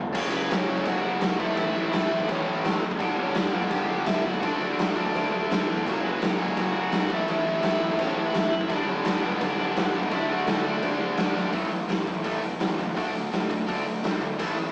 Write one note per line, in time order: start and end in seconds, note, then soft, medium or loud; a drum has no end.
0.00 0.15 G1 medium
0.00 0.12 G2 medium
0.00 0.14 D3 medium
0.15 0.31 F#1 medium
0.15 0.31 F#2 loud
0.15 0.32 C#3 loud
0.15 0.33 F#3 loud
0.15 kick loud
0.15 crash loud
0.15 crash medium
0.31 0.48 F#1 medium
0.31 0.50 F#2 medium
0.31 0.51 C#3 loud
0.31 0.51 F#3 loud
0.31 0.51 B3 medium
0.31 0.53 B4 medium
0.50 0.66 F#1 loud
0.50 0.67 F#2 loud
0.50 0.68 C#3 loud
0.50 0.67 F#3 loud
0.50 0.85 C#4 medium
0.50 0.87 C#5 medium
0.50 snare loud
0.50 crash medium
0.68 0.84 F#1 medium
0.68 0.84 F#2 medium
0.68 0.85 C#3 loud
0.68 0.86 F#3 medium
0.78 kick medium
0.85 1.02 F#1 loud
0.85 1.02 F#2 loud
0.85 1.02 C#3 loud
0.85 1.03 F#3 loud
0.85 1.03 F#4 medium
0.85 1.04 F#5 loud
0.85 kick loud
0.85 crash medium
1.03 1.20 F#1 medium
1.03 1.20 F#2 medium
1.03 1.21 C#3 medium
1.03 1.21 F#3 loud
1.03 1.38 F#4 medium
1.03 1.38 F#5 loud
1.21 1.38 F#1 medium
1.21 1.39 F#2 loud
1.21 1.39 C#3 loud
1.21 1.39 F#3 loud
1.21 snare loud
1.21 crash medium
1.39 1.55 A1 medium
1.39 1.57 A2 loud
1.39 1.58 E3 loud
1.39 1.58 A3 loud
1.39 1.56 E4 medium
1.39 1.57 E5 medium
1.39 kick loud
1.57 1.73 A1 medium
1.57 1.73 A2 medium
1.57 1.74 E3 medium
1.57 1.74 A3 loud
1.57 1.91 E4 medium
1.57 1.92 E5 loud
1.57 crash medium
1.75 1.92 A1 medium
1.75 1.91 A2 medium
1.75 1.92 E3 medium
1.75 1.93 A3 loud
1.92 2.09 A1 loud
1.92 2.09 A2 medium
1.92 2.10 E3 loud
1.92 2.10 A3 loud
1.92 2.26 E4 medium
1.92 2.27 E5 loud
1.92 snare loud
1.92 crash medium
2.10 2.27 A1 medium
2.10 2.27 A2 medium
2.10 2.28 E3 loud
2.10 2.29 A3 loud
2.20 kick medium
2.28 2.45 A1 loud
2.28 2.45 A2 loud
2.28 2.45 E3 loud
2.28 2.45 A3 loud
2.28 2.79 C#4 medium
2.28 2.80 C#5 medium
2.28 kick loud
2.28 crash medium
2.46 2.62 A1 medium
2.46 2.64 A2 medium
2.46 2.65 E3 loud
2.46 2.65 A3 loud
2.64 2.80 A1 medium
2.64 2.81 A2 loud
2.64 2.82 E3 loud
2.64 2.83 A3 loud
2.64 snare loud
2.64 crash medium
2.82 2.98 A1 medium
2.82 2.99 A2 medium
2.82 3.00 E3 medium
2.82 3.00 A3 loud
2.91 kick medium
2.99 3.16 G1 medium
2.99 3.16 G2 loud
2.99 3.17 D3 loud
2.99 3.17 G3 loud
2.99 kick loud
2.99 crash medium
3.17 3.33 G1 loud
3.17 3.35 G2 medium
3.17 3.35 D3 medium
3.17 3.36 G3 loud
3.17 3.35 C#4 medium
3.22 3.38 C#5 medium
3.35 3.51 G1 medium
3.35 3.52 G2 loud
3.35 3.53 D3 loud
3.35 3.54 G3 loud
3.35 3.69 D4 medium
3.35 3.74 D5 loud
3.35 snare loud
3.35 crash medium
3.53 3.69 G1 medium
3.53 3.69 G2 medium
3.53 3.70 D3 loud
3.53 3.71 G3 loud
3.62 kick medium
3.70 3.86 G1 loud
3.70 3.87 G2 loud
3.70 3.88 D3 loud
3.70 3.88 G3 loud
3.70 3.88 G4 medium
3.70 3.89 G5 loud
3.70 kick loud
3.70 crash medium
3.89 4.05 G1 medium
3.89 4.06 G2 loud
3.89 4.07 D3 medium
3.89 4.07 G3 loud
3.89 4.06 G4 medium
3.89 4.06 G5 loud
4.05 4.22 G1 medium
4.05 4.24 G2 loud
4.05 4.25 D3 loud
4.05 4.25 G3 loud
4.05 4.23 E4 medium
4.05 4.25 E5 loud
4.05 snare loud
4.05 crash medium
4.24 4.44 G1 medium
4.24 4.42 G2 medium
4.24 4.42 D3 medium
4.24 4.43 G3 loud
4.24 4.92 F#4 medium
4.24 4.96 F#5 medium
4.34 kick medium
4.42 4.58 D2 medium
4.42 4.59 D3 medium
4.42 4.60 A3 loud
4.42 4.60 D4 loud
4.42 kick loud
4.42 crash medium
4.60 4.76 D2 medium
4.60 4.77 D3 medium
4.60 4.78 A3 medium
4.60 4.78 D4 medium
4.78 4.94 D2 medium
4.78 4.96 D3 loud
4.78 4.97 A3 loud
4.78 4.96 D4 loud
4.78 snare loud
4.78 crash medium
4.96 5.12 D2 medium
4.96 5.14 D3 medium
4.96 5.15 A3 medium
4.96 5.15 D4 loud
5.06 kick medium
5.15 5.30 D2 loud
5.15 5.30 D3 medium
5.15 5.32 A3 loud
5.15 5.31 D4 loud
5.15 kick medium
5.15 crash medium
5.31 5.48 D2 medium
5.31 5.48 D3 medium
5.31 5.49 A3 loud
5.31 5.50 D4 medium
5.49 5.65 D2 medium
5.49 5.66 D3 loud
5.49 5.67 A3 medium
5.49 5.67 D4 loud
5.49 snare loud
5.49 crash medium
5.67 5.83 E2 medium
5.67 5.84 D3 medium
5.67 5.87 A3 medium
5.67 5.85 D4 medium
5.78 kick medium
5.86 6.01 F#1 loud
5.86 6.01 F#2 loud
5.86 6.02 C#3 loud
5.86 6.03 F#3 loud
5.86 kick medium
5.86 crash medium
6.03 6.19 F#1 medium
6.03 6.19 F#2 medium
6.03 6.20 C#3 loud
6.03 6.21 F#3 loud
6.03 6.21 B3 medium
6.03 6.25 B4 medium
6.21 6.37 F#1 loud
6.21 6.37 F#2 loud
6.21 6.38 C#3 loud
6.21 6.39 F#3 loud
6.21 snare loud
6.21 crash medium
6.25 6.56 C#4 medium
6.25 6.58 C#5 medium
6.39 6.54 F#1 medium
6.39 6.56 F#2 medium
6.39 6.56 C#3 medium
6.39 6.57 F#3 loud
6.48 kick medium
6.56 6.72 F#1 loud
6.56 6.74 F#2 medium
6.56 6.75 C#3 loud
6.56 6.75 F#3 loud
6.56 6.75 F#4 medium
6.56 6.76 F#5 medium
6.56 kick loud
6.56 crash medium
6.75 6.90 F#1 medium
6.75 6.89 F#2 medium
6.75 6.90 C#3 medium
6.75 6.91 F#3 loud
6.75 7.09 F#4 medium
6.80 7.10 F#5 loud
6.91 7.09 B1 medium
6.91 7.08 F#2 loud
6.91 7.08 C#3 loud
6.91 7.09 F#3 loud
6.91 snare loud
6.91 crash medium
7.09 7.25 A1 medium
7.09 7.26 A2 loud
7.09 7.26 E3 loud
7.09 7.26 A3 loud
7.09 kick loud
7.14 7.19 E4 medium
7.14 7.19 E5 loud
7.27 7.42 A1 medium
7.27 7.43 A2 loud
7.27 7.43 E3 medium
7.27 7.44 A3 loud
7.27 crash medium
7.31 7.62 E4 medium
7.31 7.64 E5 loud
7.44 7.60 A1 medium
7.44 7.62 A2 medium
7.44 7.62 E3 loud
7.44 7.63 A3 loud
7.62 7.78 A1 loud
7.62 7.79 A2 loud
7.62 7.80 E3 loud
7.62 7.80 A3 loud
7.62 7.97 E4 medium
7.62 8.01 E5 loud
7.62 snare loud
7.62 crash medium
7.80 7.96 A1 medium
7.80 7.96 A2 medium
7.80 7.97 E3 loud
7.80 7.97 A3 loud
7.90 kick medium
7.98 8.14 A1 loud
7.98 8.14 A2 loud
7.98 8.14 E3 loud
7.98 8.15 A3 loud
7.98 8.16 C#4 medium
7.98 8.18 C#5 medium
7.98 kick loud
7.98 crash medium
8.15 8.31 A1 medium
8.15 8.31 A2 medium
8.15 8.32 E3 loud
8.15 8.32 A3 loud
8.15 8.66 E4 medium
8.15 8.71 E5 loud
8.32 8.49 A1 medium
8.32 8.49 A2 medium
8.32 8.50 E3 loud
8.32 8.50 A3 loud
8.32 snare loud
8.32 crash medium
8.50 8.67 A1 medium
8.50 8.68 A2 medium
8.50 8.68 E3 medium
8.50 8.69 A3 loud
8.61 kick medium
8.68 8.85 G1 medium
8.68 8.86 G2 loud
8.68 8.87 D3 loud
8.68 8.87 G3 loud
8.68 8.88 D5 loud
8.68 kick loud
8.68 crash medium
8.72 8.88 D4 medium
8.87 9.03 G1 medium
8.87 9.04 G2 medium
8.87 9.05 D3 medium
8.87 9.05 G3 loud
8.87 9.05 C#4 medium
8.87 9.07 C#5 medium
9.05 9.20 G1 loud
9.05 9.22 G2 loud
9.05 9.23 D3 loud
9.05 9.24 G3 loud
9.05 9.23 B3 medium
9.05 9.23 B4 medium
9.05 snare loud
9.05 crash medium
9.20 9.38 G1 medium
9.20 9.40 G2 medium
9.20 9.41 D3 medium
9.20 10.09 G3 medium
9.20 9.40 B4 medium
9.25 9.40 G3 loud
9.25 9.41 B3 medium
9.32 kick medium
9.40 9.56 G1 loud
9.40 9.57 G2 loud
9.40 9.58 D3 medium
9.40 9.58 G3 loud
9.40 9.57 D4 medium
9.40 9.58 D5 medium
9.40 kick loud
9.40 crash medium
9.58 9.74 G1 medium
9.58 9.75 G2 medium
9.58 9.76 D3 medium
9.58 9.77 G3 loud
9.58 9.76 D4 medium
9.58 9.76 D5 medium
9.76 9.92 G1 medium
9.76 9.93 G2 loud
9.76 9.93 D3 loud
9.76 9.94 G3 loud
9.76 9.93 B3 medium
9.76 9.96 B4 medium
9.76 snare loud
9.76 crash medium
9.94 10.13 G1 medium
9.94 10.11 G2 medium
9.94 10.11 D3 medium
9.94 10.11 G3 medium
9.94 10.11 D4 medium
9.94 10.12 D5 medium
10.03 kick medium
10.11 10.27 D2 medium
10.11 10.29 D3 medium
10.11 10.30 A3 loud
10.11 10.30 D4 loud
10.11 10.29 E4 medium
10.11 10.30 E5 medium
10.11 kick loud
10.11 crash medium
10.26 10.44 D2 medium
10.26 10.47 D3 medium
10.26 10.78 F#4 medium
10.26 10.78 F#5 medium
10.31 10.48 A3 loud
10.31 10.48 D4 loud
10.47 10.63 D2 medium
10.47 10.64 D3 loud
10.47 10.65 A3 loud
10.47 10.65 D4 loud
10.47 snare loud
10.47 crash medium
10.65 10.80 D2 medium
10.65 10.82 D3 medium
10.65 10.82 A3 medium
10.65 10.83 D4 loud
10.74 kick medium
10.82 10.98 D2 loud
10.82 11.00 D3 loud
10.82 11.00 A3 loud
10.82 11.00 D4 loud
10.82 kick loud
10.82 crash medium
11.00 11.16 D2 medium
11.00 11.17 D3 medium
11.00 11.18 A3 medium
11.00 11.18 D4 loud
11.17 11.34 D2 medium
11.17 11.34 D3 loud
11.17 11.35 A3 loud
11.17 11.36 D4 loud
11.17 snare loud
11.17 crash medium
11.35 11.51 G#1 medium
11.35 11.53 D3 medium
11.35 11.53 A3 medium
11.35 11.53 D4 loud
11.35 snare medium
11.53 11.66 A1 medium
11.53 12.24 A2 medium
11.53 12.25 E3 medium
11.53 11.70 A3 medium
11.53 kick loud
11.53 open hi-hat medium
11.57 12.28 A3 loud
11.70 11.83 A1 medium
11.70 11.87 A2 medium
11.70 11.87 E3 medium
11.70 open hi-hat medium
11.88 12.01 A1 medium
11.88 12.05 A2 medium
11.88 12.05 E3 medium
11.88 snare loud
11.88 open hi-hat medium
12.06 12.19 A1 medium
12.06 12.23 A2 medium
12.06 12.23 E3 medium
12.06 kick medium
12.06 open hi-hat medium
12.24 12.37 A1 medium
12.24 12.95 A2 medium
12.24 12.96 E3 medium
12.24 12.97 A3 medium
12.24 kick loud
12.24 open hi-hat medium
12.43 12.55 G1 medium
12.43 12.59 A2 medium
12.43 12.60 E3 medium
12.43 open hi-hat medium
12.60 12.73 A1 medium
12.60 12.77 A2 medium
12.60 12.77 E3 medium
12.60 snare loud
12.60 open hi-hat medium
12.78 12.91 C#2 medium
12.78 12.95 A2 medium
12.78 12.95 E3 medium
12.78 kick medium
12.78 open hi-hat medium
12.95 13.09 D2 medium
12.95 13.66 D3 medium
12.95 13.67 A3 medium
12.95 13.68 D4 medium
12.95 kick loud
12.95 open hi-hat medium
13.14 13.27 D2 medium
13.14 13.30 D3 medium
13.14 13.30 A3 medium
13.14 open hi-hat medium
13.32 13.45 D2 medium
13.32 13.48 D3 medium
13.32 13.48 A3 medium
13.32 snare loud
13.32 open hi-hat medium
13.50 13.62 D2 medium
13.50 13.66 D3 medium
13.50 13.66 A3 medium
13.50 kick medium
13.50 open hi-hat medium
13.67 13.80 D2 medium
13.67 14.37 D3 medium
13.67 14.39 A3 medium
13.67 14.39 D4 medium
13.67 kick loud
13.67 open hi-hat medium
13.85 13.98 B1 medium
13.85 14.01 D3 medium
13.85 14.02 A3 medium
13.85 open hi-hat medium
14.03 14.16 D2 medium
14.03 14.20 D3 medium
14.03 14.20 A3 medium
14.03 snare loud
14.03 open hi-hat medium
14.21 14.33 D2 medium
14.21 14.37 D3 medium
14.21 14.38 A3 medium
14.21 kick medium
14.21 open hi-hat medium
14.37 14.52 A1 medium
14.37 14.72 A2 medium
14.37 14.72 E3 medium
14.37 14.72 A3 medium
14.37 kick loud
14.37 crash medium
14.56 14.69 A1 medium
14.56 14.72 A2 medium
14.56 14.72 E3 medium
14.56 open hi-hat medium